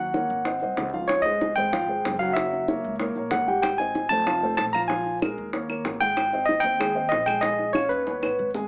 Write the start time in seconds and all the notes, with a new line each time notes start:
Already playing: D#2 F#5
0.14 A#3 A#4 C#5, high bongo
0.30 G#1
0.45 C4 C5 D#5, high bongo
0.61 C2 C4 C5 D#5, high bongo
0.77 C#2, high bongo, low bongo
0.94 F3 F4 F5, high bongo
1.08 C#5, high bongo
1.22 G#3 G#4 C5 D#5, high bongo
1.41 high bongo
1.56 G#1 G#3 G#4 C5 G5, high bongo
1.72 F3 F4 F5, high bongo
1.88 G#3 G#4 C5
2.05 F#1, high bongo, low bongo
2.19 F#3 F#4 F5 F#5, high bongo
2.33 F#3 F#4 E5 F#5, high bongo
2.53 high bongo
2.68 A#3 A#4 C#5, high bongo
2.84 C#2
3.00 A#3 A#4 C#5, high bongo
3.15 A#1 A#3 A#4 C#5, high bongo
3.31 G#1 F#5, high bongo, low bongo
3.47 G3 G4 G5, high bongo
3.62 G5, high bongo, claves
3.78 C4 C5 D#5 G#5, high bongo
3.95 high bongo
4.09 F1 A3 A4 C5 A5, high bongo
4.26 F3 F4 F5, high bongo, claves
4.43 A3 A4 C5
4.57 A#1 A5, high bongo, low bongo
4.73 F3 F4 F5 A#5, high bongo, claves
4.88 F3 F4 F5 G#5, high bongo
5.06 high bongo
5.22 G#3 G#4 A#4, high bongo, claves
5.38 D#2
5.53 A#3 A#4 C#5, high bongo
5.69 A#3 A#4 C#5, high bongo, claves
5.85 G#1, high bongo, low bongo
6.00 G#3 G#4 G5, high bongo
6.17 high bongo, claves
6.33 C4 C5 D#5, high bongo
6.45 D#5, high bongo
6.60 D#2 G5
6.64 C4 C5 D#5, high bongo
6.79 G#3 G#4 G#5, high bongo, claves
6.95 C4 C5 D#5
7.09 A#1 D#5, high bongo, low bongo
7.26 G#3 G#4 G5 G#5, high bongo, claves
7.41 G#3 G#4 D#5 G#5, high bongo
7.59 high bongo
7.73 C#4 C#5 F5, high bongo, claves
7.89 D#2 B4
8.06 B3 B4 C#5, high bongo
8.22 A1 B3 B4 C#5, high bongo, claves
8.39 G#1
8.54 G#3 G#4 G#5, low bongo